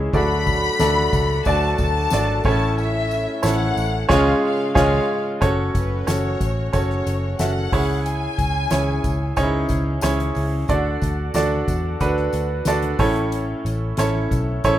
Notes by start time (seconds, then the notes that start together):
Already playing: C#3 G#3 C#4 E4 G#4 C#5 E5
0.13 D2 D3 F#3 A3 D4 F#4 A4 D5 B5, kick, ride, tambourine
0.47 kick, ride, tambourine
0.79 D2 A3 D4 F#4 A4 D5, snare, ride, tambourine
1.13 C#2, kick, ride, tambourine
1.30 ride
1.45 D2 A3 D4 F#4 A4 D5 A5, kick, ride, tambourine
1.78 D2 A5, kick, ride, tambourine
1.95 ride
2.10 G#1 A3 D4 F#4 A4 D5, snare, tambourine
2.44 A1 A2 A3 C#4 E4 A4 C#5 A5, kick, tambourine, crash
2.62 ride
2.78 E5, ride, tambourine
3.11 ride, tambourine
3.28 ride
3.42 A1 A3 C#4 E4 A4 C#5 F#5, snare, tambourine
3.61 ride
3.77 A1, tambourine
3.94 ride
4.09 C#2 C#3 G#3 C#4 F4 G#4 C#5 F5, kick, snare
4.43 F5
4.74 C#2 G#3 C#4 F4 G#4 C#5 F5, kick, snare, crash
5.41 F#1 A3 C#4 F#4 A4 C#5, kick, closed hi-hat
5.75 F#1 B4, kick, closed hi-hat, tambourine
6.07 F#1 C#4 F#4 A4 C#5, snare, closed hi-hat, tambourine
6.41 A1, kick, closed hi-hat, tambourine
6.73 F#1 C#4 F#4 A4 C#5, kick, closed hi-hat, tambourine
6.90 snare
7.07 F#1, closed hi-hat, tambourine
7.39 F#1 C#4 F#4 A4 E5 F#5, snare, closed hi-hat, tambourine
7.72 C#2 C#3 C#4 E4 G#4 C#5, kick, open hi-hat
8.05 G#5, closed hi-hat, tambourine
8.38 C#2, kick, closed hi-hat, tambourine
8.70 C#2 C#4 E4 G#4 C#5, snare, closed hi-hat, tambourine
9.04 C#2, kick, closed hi-hat, tambourine
9.36 C#2 C#4 D#4 G#4 C#5, kick, closed hi-hat, tambourine
9.43 E4
9.69 C#2, kick, closed hi-hat, tambourine
10.01 C#2 C#4 E4 G#4 C#5, snare, closed hi-hat, tambourine
10.20 closed hi-hat
10.35 C#2, open hi-hat, tambourine
10.68 D2 D3 D4 F#4 A4 D5, kick, closed hi-hat, tambourine
11.02 D2, kick, closed hi-hat, tambourine
11.34 D2 D4 F#4 A4 D5, snare, closed hi-hat, tambourine
11.68 E2, kick, closed hi-hat, tambourine
12.00 D2 D4 F#4 A4 B4, kick, closed hi-hat, tambourine
12.17 snare
12.33 D2, closed hi-hat, tambourine
12.65 D2 D4 F#4 A4 D5, snare, closed hi-hat, tambourine
12.82 closed hi-hat
12.99 A1 A2 A3 C#4 E4 A4 C#5, kick, open hi-hat
13.16 closed hi-hat
13.32 closed hi-hat, tambourine
13.65 A1, closed hi-hat, tambourine
13.97 A1 C#4 E4 A4 C#5, snare, closed hi-hat, tambourine
14.31 B1, kick, closed hi-hat, tambourine
14.64 A1 C#4 E4 A4 C#5, kick, closed hi-hat, tambourine